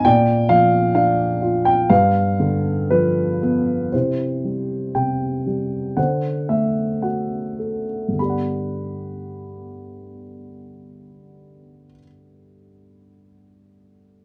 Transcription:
0.05 A#2 D5 G5
0.49 F3 F5
0.95 D4 F5
1.42 F4
1.65 G5
1.90 G2 B4 F5
2.40 D3
2.90 F3 B4
3.43 B3
3.92 C3 E4 C5
4.44 G3
4.95 C3 G5
5.46 G3
5.97 D3 C5 F#5
6.49 A3 E5
7.02 F#4 F#5
7.59 A4
8.08 G2
8.13 D3
8.17 B3 B5
8.21 G4 D5
8.29 F#5

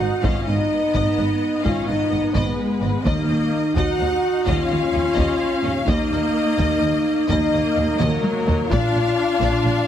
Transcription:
Already playing: D#4 F#4 F#5, impact
0.00 G#1 G#2
0.23 G#1 G#2 C#4 F4 D#5 F5, taiko
0.46 G#1 G#2 B3 D#4 D#5
0.94 G#1 G#2 D#5, taiko
1.18 G#1 G#2 D#5
1.64 G#1 G#2 C#4 F4 D#5 F5, taiko
1.88 G#1 G#2 B3 D#4 D#5
2.12 G#1 G#2 D#5
2.34 G#1 G#2 G#3 B3 B4 D#5, taiko
2.82 G#1 G#2 D#5
3.05 D#2 D#3 A#3 D#4 D#5, taiko
3.28 D#2 D#5
3.75 D#2 D#4 F#4 D#5 F#5, taiko
3.99 D#2 D#5
4.46 D#2 C#4 F4 D#5 F5, taiko
4.70 D#2 D#5
4.93 D#2 D#5
5.16 D#2 D#5, taiko
5.64 D#2 D#5
5.86 D#2 A#3 D#4 D#5, taiko
6.11 D#2 D#5
6.58 D#2 D#5, taiko
6.81 D#2 D#5
7.29 D#2 A#3 D#4 D#5, taiko
7.53 D#2 D#5
7.76 D#2 D#5
7.99 D#2 F#3 A#3 A#4 D#5, taiko mid
8.24 taiko high
8.47 D#2 D#5, taiko low
8.69 A#1 A#2 D4 F4 D5 F5, taiko
8.94 A#1 A#2 D5
9.41 A#1 A#2 D5, taiko
9.64 A#1 A#2 D5

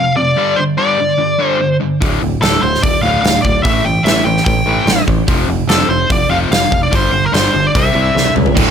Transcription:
Already playing: F2 C3 F5
0.17 F2 C3 D5
0.36 G2 D3 G3
0.56 G2 D3 C5
0.77 G2 D3 G3 D5
0.98 G2 D3
1.18 G2 D3
1.39 G2 D3 G3
1.47 C5
1.59 G2 D3
1.80 G2 D3
2.01 D1 D2 A2 D3, kick, open hi-hat
2.22 D1 D2 A2
2.41 D1 D2 A2 D3 A4, snare, open hi-hat
2.63 D1 D2 A2 C5
2.74 snare
2.83 D1 D2 A2 D5, kick, open hi-hat
3.02 D1 D2 A2 D3 F5
3.22 D1 D2 A2 F5, snare, open hi-hat
3.42 D1 D2 D5, kick
3.46 A2
3.63 A1 A2 E3 A3 E5, kick, open hi-hat
3.85 A1 A2 E3 G5
4.04 A1 A2 E3 A3 E5, snare, open hi-hat
4.24 A1 A2 E3 G5
4.37 snare
4.45 A1 A2 E3 G5, kick, open hi-hat
4.66 A1 A2 E3 A3
4.86 A1 A2 E3, snare, open hi-hat
5.08 A1 A2 E3, kick
5.28 F1 F2 C3 F3, kick, open hi-hat
5.48 F1 F2 C3
5.67 F1 F2 C3 F3 A4, snare, open hi-hat
5.89 F1 F2 C3 C5
6.10 F1 F2 C3 D5, kick, open hi-hat
6.30 F1 F2 C3 F3 F5
6.50 F1 F2 C3 F5, snare, open hi-hat
6.71 F1 F2 C3, kick
6.83 D5
6.91 G1 G2 D3 G3, kick, open hi-hat
6.95 C5
7.11 G1 G2 D3
7.26 A#4
7.32 G1 G2 D3 G3 C5, snare, open hi-hat
7.54 G1 G2 D3
7.67 D5
7.75 C2 C3 G3 C4 E5, kick, open hi-hat
7.93 C2 C3 G3 C4
8.15 C2 C3 G3, snare
8.26 high tom
8.36 C#2 C3 G3, mid tom
8.46 floor tom
8.57 D1 D2 A2 D3, kick, crash

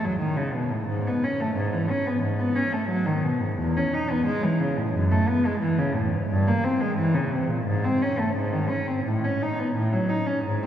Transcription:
0.04 F#3
0.19 D#3
0.37 C#3
0.53 B2
0.70 A2
0.87 G#2
1.07 B3
1.24 C#4
1.40 A3
1.56 G#2
1.73 E3
1.90 C#4
2.06 B3
2.23 G#2
2.39 B3
2.56 C#4
2.73 A3
2.88 F#3
3.05 D#3
3.23 B2
3.40 G#2
3.58 E2
3.77 C#4
3.93 D#4
4.11 B3
4.26 G#3
4.43 E3
4.60 C#3
4.77 A2
4.94 F#2
5.11 A3
5.28 B3
5.46 G#3
5.61 E3
5.79 C#3
5.95 A2
6.12 G#2
6.29 G2
6.47 A#3
6.64 C4
6.81 G#3
6.97 E3
7.14 C#3
7.33 C3
7.48 A#2
7.66 G#2
7.84 C4
8.02 C#4
8.19 A3
8.36 G#2
8.53 D#3
8.69 C#4
8.87 C4
9.05 A2
9.24 C#4
9.42 D#4
9.59 B3
9.75 A2
9.93 F#3
10.09 D#4
10.27 C#4
10.44 G#2
10.63 C4

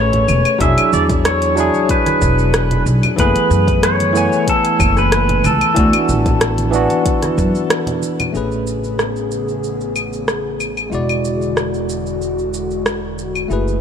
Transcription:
Already playing: A1 A3 C#4 G#4 B4 C#5
0.13 closed hi-hat, muted conga, low conga
0.28 E1, high conga, claves, shaker
0.45 closed hi-hat, claves, shaker
0.58 E1 F#3 D4 E4 E5, kick, closed hi-hat, shaker
0.63 G#4
0.77 closed hi-hat, muted conga, claves, shaker
0.93 E2 D5, high conga, shaker
1.09 kick, closed hi-hat, low conga, shaker
1.25 C#5, cross-stick, closed hi-hat, shaker
1.42 closed hi-hat, shaker
1.55 F#3 D4 E4, shaker
1.60 G#4
1.74 muted conga, shaker
1.89 B4, kick, closed hi-hat, shaker
2.06 cross-stick, closed hi-hat, high conga, shaker
2.22 E1, kick, shaker
2.39 shaker
2.54 cross-stick, closed hi-hat, shaker
2.71 closed hi-hat, low conga
2.86 B1, muted conga, shaker
3.03 closed hi-hat, low conga, claves, shaker
3.16 F#1 E3 A3 B3 B4, kick, closed hi-hat, shaker
3.21 G#4
3.36 closed hi-hat, muted conga, shaker
3.50 F#2, shaker
3.67 kick, closed hi-hat, shaker
3.83 C#5, cross-stick, closed hi-hat, shaker
4.00 closed hi-hat, high conga, shaker
4.13 E3 A3 B3, shaker
4.17 G#5
4.32 muted conga, shaker
4.47 A4, kick, closed hi-hat, shaker
4.65 closed hi-hat, shaker
4.80 F#1, kick, muted conga, claves, shaker
4.97 B4, cross-stick, shaker
5.12 cross-stick, closed hi-hat, shaker
5.29 closed hi-hat, muted conga, low conga
5.44 C#2 A4, high conga, claves, shaker
5.61 closed hi-hat, claves, shaker
5.74 D2 E3 B3 D4, kick, closed hi-hat, shaker
5.79 F#4
5.93 closed hi-hat, muted conga, claves, shaker
6.09 A1, high conga, shaker
6.26 kick, closed hi-hat, low conga, shaker
6.41 cross-stick, closed hi-hat, shaker
6.58 closed hi-hat, high conga, shaker
6.71 E3 B3 D4, shaker
6.76 F#4
6.90 closed hi-hat, muted conga, shaker
7.06 kick, closed hi-hat, shaker
7.23 cross-stick, closed hi-hat, high conga, shaker
7.38 F#2, kick, muted conga, shaker
7.55 shaker
7.70 cross-stick, closed hi-hat, shaker
7.87 closed hi-hat, low conga, shaker
8.03 muted conga, shaker
8.20 closed hi-hat, low conga, claves, shaker
8.32 A1 C#3 A3 B3 C#4 G#4, shaker
8.37 B4
8.52 shaker
8.67 shaker
8.84 shaker
8.99 cross-stick, shaker
9.16 shaker
9.31 shaker
9.49 shaker
9.64 shaker
9.81 shaker
9.96 claves, shaker
10.13 shaker
10.28 cross-stick, shaker
10.60 claves, shaker
10.77 claves, shaker
10.90 E1 D3 G#3 E4 F#4, shaker
10.95 D5
11.09 claves, shaker
11.25 shaker
11.42 shaker
11.57 cross-stick, shaker
11.74 shaker
11.89 shaker
12.06 shaker
12.22 shaker
12.39 shaker
12.54 shaker
12.71 shaker
12.86 cross-stick, shaker
13.19 shaker
13.35 claves, shaker
13.48 F#1 E3 A3 B3 E4 G#4, shaker
13.53 B4
13.68 shaker

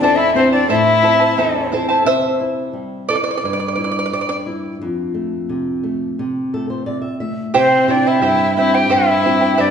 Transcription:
Already playing: C4 E4 A4
0.00 E2 D4 E4 A4 C5 D5 E5 A5
0.16 E4 E5
0.35 C4 E4 A4 C5 E5 A5
0.52 D4 E4 C5 D5 A5
0.68 A2 E4 A4 C5 E5 A5
1.02 C4 E4 A4 C5 E5 A5
1.20 E4 C5 A5
1.37 E2 E4 A4 C5 E5 A5
1.72 C4 E4 A4 C5 E5 A5
1.89 E4 C5 A5
2.05 C3 C5 E5
2.40 E4
2.73 G3
3.09 E4 A4 D5
3.15 D5
3.24 D5
3.31 D5
3.37 D5
3.44 G2 D5
3.53 D5
3.60 D5
3.68 D5
3.75 E4 D5
3.84 D5
3.91 D5
3.99 D5
4.06 D5
4.13 G3 D5
4.21 D5
4.29 D5
4.46 E4
4.82 F2
5.14 A3
5.49 C3
5.83 A3
6.19 C3
6.54 A3 A4
6.70 C5
6.86 C3 D5
7.02 E5
7.20 A3 E5
7.54 C3 E4 G4 C5 E5 G5
7.58 C4 C5
7.87 C4 E4 G4 C5 D5 E5 G5
7.92 D4
8.07 E4 C5 E5 G5
8.21 G2 E4 G4 C5 E5 G5
8.56 C4 E4 G4 C5 E5 G5
8.74 E4 G4 C5 G5
8.89 G2 E4 G4 C5 E5 G5
9.24 C4 E4 G4 C5 E5 G5
9.41 E4 C5 G5
9.58 G2 D4 E4 G4 C5 D5 E5 G5

